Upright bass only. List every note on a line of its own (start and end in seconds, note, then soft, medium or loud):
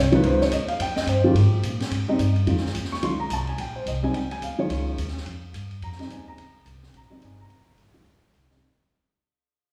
0.00 0.23 C2 medium
0.24 0.51 C#2 medium
0.52 0.78 D#2 medium
0.79 1.06 F2 medium
1.06 1.34 G2 medium
1.34 1.62 G#2 medium
1.62 1.90 A#2 medium
1.91 2.18 G#2 medium
2.19 2.46 G2 medium
2.47 2.74 F2 medium
2.75 3.02 D#2 medium
3.03 3.29 C#2 medium
3.30 3.57 C2 medium
3.58 3.85 A#1 medium
3.86 4.13 C2 medium
4.13 4.41 C#2 medium
4.42 4.69 D2 medium
4.69 4.97 C#2 medium
4.98 5.25 D#2 medium
5.26 5.53 F2 medium
5.53 5.81 G2 medium
5.82 6.09 F2 medium
6.10 6.37 D#2 medium
6.37 6.65 C#2 medium
6.65 6.93 C2 medium
6.93 7.05 A#1 medium
7.04 7.12 F1 medium
7.13 7.21 C#1 soft
7.22 7.49 G1 medium
7.50 7.77 F1 medium
7.78 8.04 G#1 medium
8.05 8.33 A#1 medium
8.33 8.61 C2 medium